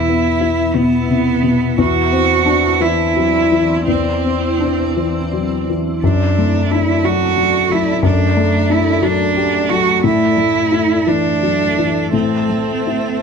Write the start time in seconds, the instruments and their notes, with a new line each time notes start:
Already playing: grand piano E2 B2, ambient pad B3 E4 E5, cello E4
0.09 grand piano B3
0.41 grand piano E4
0.74 grand piano B2, cello B3
1.09 grand piano C3
1.43 grand piano B2
1.78 grand piano E2, ambient pad C4 E4 D5, cello F#4
2.12 grand piano C4
2.46 grand piano D4
2.81 grand piano E3, cello E4
3.16 grand piano F#3
3.52 grand piano E3
3.88 grand piano E2, cello C4
4.24 grand piano C4
4.60 grand piano D4
4.97 grand piano E3
5.33 grand piano F#3
5.70 grand piano E3
6.02 grand piano F#2, ambient pad A3 A4 D5, cello D4
6.38 grand piano A3
6.71 grand piano D4, cello E4
7.04 grand piano F#3, cello F#4
7.38 grand piano F#3
7.70 grand piano F#3, cello E4
8.03 grand piano F#2, cello D4
8.37 grand piano A3
8.70 grand piano D4, cello E4
9.02 grand piano F#3, cello D4
9.37 grand piano G4
9.69 grand piano F#3, cello F#4
10.03 grand piano A2, ambient pad A3 A4 E5, cello E4
10.37 grand piano A3
10.72 grand piano E4
11.07 grand piano E3, cello D4
11.43 grand piano F#3
11.78 grand piano E3
12.13 grand piano A2, cello C4
12.49 grand piano A3
12.87 grand piano E4